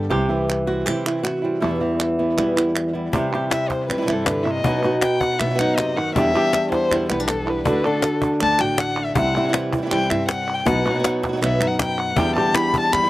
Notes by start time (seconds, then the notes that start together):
Already playing: A4
0.09 C2 C3 E3 G3 C4 E4 G4
0.29 E3 G3 C4 E4
0.48 muted nylon-string guitar stroke, clap
0.67 G3 C4 E4 F#4
0.86 C3 E3 G3 C4 E4 G4, clap
1.06 G3 C4 E4, clap
1.23 F#4, muted nylon-string guitar stroke, clap
1.42 G3 C4 E4
1.60 E2 B2 E3 G3 B3 E4
1.80 E3 G3 B3 E4
1.99 muted nylon-string guitar stroke, clap
2.19 G3 B3 E4
2.37 B2 E3 G3 B3 E4, clap
2.56 G3 B3 E4, clap
2.75 muted nylon-string guitar stroke, clap
2.93 G3 B3 E4
3.12 C3 E3 G3 C4 E4, cajon bass
3.16 G4
3.34 G3 E4 G4
3.50 G3 C4 E4 E5, cajon slap, clap
3.69 C5, cajon bass, cajon slap
3.88 C3 G3 B4, muted nylon-string guitar stroke, clap
3.92 E3 G3 C4 E4
3.97 E3 G3 C4 E4
4.01 E3 G3 C4 E4
4.06 G2 C3 E3 G3 C4 E4, clap
4.12 A4
4.25 D3 E3 G3 C4 E4 B4, cajon bass, cajon slap, clap
4.43 C3 G3 C4 E4 E5
4.51 D#5
4.63 B2 F#3 B3 D#4 F#4, cajon bass
4.83 B3 D#4 F#4
5.02 B3 D#4 F#4 G5, cajon slap, clap
5.20 F#5, cajon bass
5.39 B2 B3 E5, muted nylon-string guitar stroke, clap
5.46 F#3 B3 D#4 F#4
5.50 F#3 B3 D#4 F#4
5.55 F#3 B3 D#4 F#4
5.59 F#2 B2 F#3 B3 D#4 F#4 F#5, clap
5.76 C3 F#3 B3 D#4 D#5, cajon slap, clap
5.80 F#4
5.97 D#3 B3 D#4 F#4 F#5
6.15 E2 B2 D3 G3 B3 D4 E4 G4 E5, cajon bass
6.33 G3 B3 D4 E4
6.37 G4
6.52 muted nylon-string guitar stroke, cajon slap, clap
6.70 G3 B3 E4 C5, cajon bass, cajon slap
6.90 E2 B2 D3 G3 B3 E4, clap
7.09 B1 G3 B3 E4 B4, clap
7.20 D4
7.28 A4, muted nylon-string guitar stroke, cajon slap, clap
7.46 G3 B3 E4 B4, clap
7.65 D2 D3 A3 D4 F#4 B4, cajon bass
7.83 A3 D4 F#4 A4, cajon slap
8.02 muted nylon-string guitar stroke, cajon slap, clap
8.20 A3 D4 F#4, cajon bass
8.39 D2 D3 A3 D4 F#4 A5, clap
8.58 A1 A3 D4 F#4 G5, clap
8.78 F#5, muted nylon-string guitar stroke, cajon slap, clap
8.98 A3 D4 F#4
9.05 E5
9.15 C2 C3 G3 C4 E4 F#5, muted nylon-string guitar stroke, cajon bass
9.36 G3 C4 E4
9.44 E3 G3 C4 E4
9.49 E3 G3 C4 E4
9.53 C3 E3 G3 C4 E4, cajon slap, clap
9.72 G3 C4 E4, cajon bass
9.77 E3 G3 C4 E4
9.82 E3 G3 C4 E4
9.86 E3 G3 C4 E4
9.90 C2 C3 E3 G3 C4 E4 G5, clap
10.09 G2 G3 C4 E4 E5, clap
10.28 F#5, muted nylon-string guitar stroke, cajon slap, clap
10.54 G5
10.66 B1 B2 B3 D#4 F#4 F#5, muted nylon-string guitar stroke, cajon bass
10.85 B3 D#4 F#4, cajon slap
10.90 F#3 B3 D#4 F#4
10.94 F#3 B3 D#4 F#4
10.99 F#3 B3 D#4 F#4
11.03 B2 F#3 B3 D#4 F#4, cajon slap, clap
11.22 B3 D#4 F#4, cajon bass, cajon slap
11.28 F#3 B3 D#4 F#4
11.32 F#3 B3 D#4 F#4
11.37 F#3 B3 D#4 F#4
11.41 B1 B2 F#3 B3 D#4 F#4 E5, clap
11.60 F#2 B3 D#4 F#4, clap
11.67 F#5
11.79 G5, muted nylon-string guitar stroke, cajon bass, cajon slap, clap
11.99 F#5
12.16 E2 B2 D3 G3 B3 D4 E4 G4 G5, cajon bass
12.36 G3 D4 G4 A5
12.54 G3 B3 E4 B5, cajon slap, clap
12.74 cajon bass
12.80 A5
12.92 E2 G3 B5, muted nylon-string guitar stroke, clap
13.02 D3 G3 B3 E4
13.06 D3